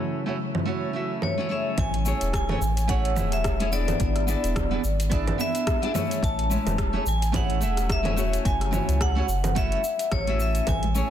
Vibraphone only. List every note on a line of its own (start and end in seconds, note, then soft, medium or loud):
1.23 1.51 C#5 medium
1.51 1.79 E5 medium
1.79 2.34 G#5 medium
2.35 2.86 G#5 medium
2.89 3.34 F#5 medium
3.33 3.74 E5 medium
3.73 5.44 D5 medium
5.41 6.26 E5 loud
6.24 7.09 A5 loud
7.08 7.33 G#5 medium
7.36 7.87 F#5 medium
7.92 8.42 E5 medium
8.46 9.03 G#5 loud
9.02 9.58 F#5 loud
9.58 10.14 E5 medium
10.12 10.40 C#5 medium
10.42 10.69 E5 medium
10.69 11.10 G#5 loud